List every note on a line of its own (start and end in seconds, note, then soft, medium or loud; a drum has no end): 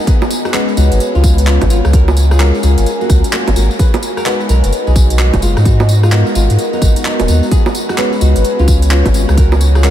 0.00 0.83 B3 medium
0.00 1.90 B3 medium
0.00 1.90 D#5 medium
0.00 1.89 F#5 medium
0.00 7.51 G#5 loud
0.07 0.29 B3 medium
0.07 9.90 F#4 medium
0.07 0.29 G#4 loud
0.07 5.61 G#5 medium
0.07 kick loud
0.07 closed hi-hat medium
0.07 tambourine soft
0.13 2.69 C#5 medium
0.22 tambourine soft
0.22 high bongo medium
0.31 open hi-hat loud
0.31 tambourine medium
0.45 0.66 D#4 medium
0.45 0.66 F#4 loud
0.45 cross-stick medium
0.45 tambourine soft
0.54 1.92 G#3 medium
0.54 1.92 B3 medium
0.54 1.92 C#4 medium
0.54 1.92 F#4 medium
0.54 1.92 B4 medium
0.54 clap loud
0.54 closed hi-hat medium
0.54 tambourine soft
0.59 1.93 B5 medium
0.68 tambourine soft
0.77 0.90 C#2 loud
0.77 0.99 D#4 medium
0.77 0.99 F#4 loud
0.77 open hi-hat medium
0.77 tambourine medium
0.92 0.99 G#1 medium
0.92 closed hi-hat medium
0.92 tambourine soft
1.00 closed hi-hat medium
1.00 tambourine soft
1.15 1.59 C#2 medium
1.15 1.36 C#4 medium
1.15 1.36 F4 loud
1.15 tambourine soft
1.24 kick loud
1.24 open hi-hat loud
1.24 tambourine medium
1.38 closed hi-hat medium
1.38 tambourine soft
1.47 1.64 C#4 medium
1.47 1.64 F4 medium
1.47 clap loud
1.47 tambourine soft
1.61 1.81 G#1 medium
1.61 kick medium
1.61 cross-stick medium
1.61 closed hi-hat medium
1.61 tambourine soft
1.61 high bongo medium
1.70 1.87 C#4 medium
1.70 1.87 F4 medium
1.70 open hi-hat loud
1.70 tambourine medium
1.85 2.52 C#2 loud
1.85 cross-stick medium
1.85 tambourine soft
1.93 2.15 F#4 medium
1.93 3.78 A#4 medium
1.93 2.15 A#4 loud
1.93 5.62 C#5 medium
1.93 3.78 F5 medium
1.93 kick loud
1.93 closed hi-hat medium
1.93 tambourine soft
2.08 tambourine soft
2.08 high bongo medium
2.17 open hi-hat loud
2.17 tambourine medium
2.31 2.52 F4 medium
2.31 2.52 G#4 loud
2.31 cross-stick medium
2.31 tambourine soft
2.40 3.78 G#3 medium
2.40 3.78 C#4 medium
2.40 3.78 F4 medium
2.40 3.78 F#4 medium
2.40 3.78 A#4 loud
2.40 clap loud
2.40 closed hi-hat medium
2.40 tambourine soft
2.55 tambourine soft
2.63 2.76 C#2 loud
2.63 2.85 F4 medium
2.63 2.85 G#4 loud
2.63 open hi-hat medium
2.63 tambourine medium
2.78 2.85 G#1 medium
2.78 3.79 A#5 medium
2.78 closed hi-hat medium
2.78 tambourine soft
2.86 closed hi-hat medium
2.86 tambourine soft
3.01 3.22 A#3 medium
3.01 3.22 F#4 medium
3.01 tambourine soft
3.10 3.22 C#2 medium
3.10 kick loud
3.10 cross-stick soft
3.10 open hi-hat loud
3.10 tambourine medium
3.24 closed hi-hat medium
3.24 tambourine soft
3.33 3.49 A#3 medium
3.33 3.49 F#4 medium
3.33 clap loud
3.33 tambourine soft
3.48 3.55 G#1 medium
3.48 closed hi-hat soft
3.48 tambourine soft
3.48 high bongo medium
3.56 3.69 G#1 medium
3.56 3.73 A#3 medium
3.56 3.73 F#4 medium
3.56 open hi-hat loud
3.56 tambourine medium
3.71 tambourine soft
3.79 4.01 G#4 medium
3.79 4.01 B4 loud
3.79 9.33 D#5 medium
3.79 9.33 F#5 medium
3.79 kick loud
3.79 closed hi-hat medium
3.79 tambourine soft
3.94 closed hi-hat soft
3.94 tambourine soft
3.94 high bongo medium
4.00 6.41 D#5 loud
4.00 open hi-hat loud
4.00 tambourine medium
4.17 4.38 F#4 medium
4.17 4.38 A#4 loud
4.17 cross-stick medium
4.17 tambourine soft
4.26 5.64 G#3 medium
4.26 5.64 B3 medium
4.26 5.64 D#4 medium
4.26 5.64 F#4 medium
4.26 5.64 B4 loud
4.26 clap loud
4.26 closed hi-hat medium
4.26 tambourine soft
4.41 tambourine soft
4.49 4.62 B1 loud
4.49 4.71 F#4 medium
4.49 4.71 A#4 medium
4.49 open hi-hat medium
4.49 tambourine medium
4.64 4.71 F#1 medium
4.64 5.65 B5 medium
4.64 closed hi-hat medium
4.64 tambourine soft
4.73 closed hi-hat medium
4.73 tambourine soft
4.87 5.31 B1 medium
4.87 5.08 B3 medium
4.87 5.08 G#4 medium
4.87 tambourine soft
4.96 kick loud
4.96 open hi-hat loud
4.96 tambourine medium
5.10 closed hi-hat medium
5.10 tambourine soft
5.19 5.36 D#4 medium
5.19 5.35 F#4 medium
5.19 clap loud
5.19 tambourine soft
5.33 5.41 F#1 medium
5.33 kick medium
5.33 cross-stick medium
5.33 closed hi-hat medium
5.33 tambourine soft
5.33 high bongo medium
5.42 5.55 F#1 medium
5.42 5.59 G#3 medium
5.42 5.59 F4 medium
5.42 open hi-hat medium
5.42 tambourine medium
5.57 6.24 G#2 medium
5.57 cross-stick medium
5.57 tambourine soft
5.65 9.34 B3 medium
5.65 5.87 D#4 medium
5.65 5.87 F#4 loud
5.65 7.50 A#5 medium
5.65 kick loud
5.65 closed hi-hat medium
5.65 tambourine soft
5.80 tambourine soft
5.80 high bongo medium
5.89 open hi-hat loud
5.89 tambourine medium
5.96 8.27 B3 medium
6.03 6.24 G#3 medium
6.03 6.24 F4 loud
6.03 cross-stick medium
6.03 tambourine soft
6.12 7.50 G#3 medium
6.12 7.50 B3 medium
6.12 7.50 D#4 medium
6.12 7.50 F#4 medium
6.12 7.50 A#4 loud
6.12 clap loud
6.12 closed hi-hat medium
6.12 tambourine soft
6.27 tambourine soft
6.35 6.48 G#1 loud
6.35 6.57 G#3 medium
6.35 6.57 F4 medium
6.35 open hi-hat medium
6.35 tambourine medium
6.50 6.57 G#2 medium
6.50 7.51 A#5 medium
6.50 closed hi-hat medium
6.50 tambourine soft
6.59 closed hi-hat medium
6.59 tambourine soft
6.73 6.94 B3 medium
6.73 6.94 D#4 loud
6.73 tambourine soft
6.82 6.95 G#1 medium
6.82 kick loud
6.82 cross-stick soft
6.82 open hi-hat loud
6.82 tambourine medium
6.96 closed hi-hat medium
6.96 tambourine soft
7.05 7.22 B3 medium
7.05 7.22 D#4 medium
7.05 clap loud
7.05 tambourine soft
7.20 7.27 D#1 medium
7.20 closed hi-hat medium
7.20 tambourine soft
7.20 high bongo medium
7.28 7.41 D#2 medium
7.28 7.45 B3 medium
7.28 7.45 D#4 medium
7.28 open hi-hat medium
7.28 tambourine medium
7.43 tambourine soft
7.51 7.74 B3 medium
7.51 7.74 G#4 loud
7.51 9.36 G#5 medium
7.51 kick loud
7.51 closed hi-hat medium
7.51 tambourine soft
7.66 9.90 C#5 medium
7.66 9.38 B5 medium
7.66 tambourine soft
7.66 high bongo medium
7.75 9.90 G#5 medium
7.75 open hi-hat loud
7.75 tambourine medium
7.89 8.11 D#4 medium
7.89 8.11 F#4 loud
7.89 cross-stick medium
7.89 tambourine soft
7.98 9.36 G#3 medium
7.98 9.36 B3 medium
7.98 9.36 C#4 medium
7.98 9.36 F#4 medium
7.98 9.36 B4 loud
7.98 clap loud
7.98 closed hi-hat medium
7.98 tambourine soft
8.13 tambourine soft
8.21 8.34 C#2 loud
8.21 8.43 D#4 medium
8.21 8.43 F#4 medium
8.21 open hi-hat medium
8.21 tambourine medium
8.36 8.43 G#1 medium
8.36 closed hi-hat medium
8.36 tambourine soft
8.45 closed hi-hat medium
8.45 tambourine soft
8.59 9.03 C#2 medium
8.59 8.80 C#4 medium
8.59 8.80 F4 loud
8.59 tambourine soft
8.68 kick loud
8.68 open hi-hat loud
8.68 tambourine medium
8.82 closed hi-hat medium
8.82 tambourine soft
8.91 9.08 C#4 medium
8.91 9.08 F4 medium
8.91 clap loud
8.91 tambourine soft
9.06 9.25 G#1 medium
9.06 kick medium
9.06 cross-stick medium
9.06 closed hi-hat medium
9.06 tambourine soft
9.06 high bongo medium
9.14 9.31 C#4 medium
9.14 9.31 F4 medium
9.14 open hi-hat loud
9.14 tambourine medium
9.29 9.90 C#2 loud
9.29 cross-stick medium
9.29 tambourine soft
9.37 9.60 F#4 medium
9.37 9.60 A#4 loud
9.37 9.90 A#4 medium
9.37 9.90 C#5 medium
9.37 9.90 F5 medium
9.37 9.90 G#5 medium
9.37 kick loud
9.37 closed hi-hat medium
9.37 tambourine soft
9.52 tambourine soft
9.52 high bongo medium
9.61 open hi-hat loud
9.61 tambourine medium
9.75 9.90 F4 medium
9.75 9.90 G#4 loud
9.75 cross-stick medium
9.75 tambourine soft
9.84 9.90 G#3 medium
9.84 9.90 C#4 medium
9.84 9.90 F4 medium
9.84 9.90 F#4 medium
9.84 9.90 A#4 loud
9.84 clap loud
9.84 closed hi-hat medium
9.84 tambourine soft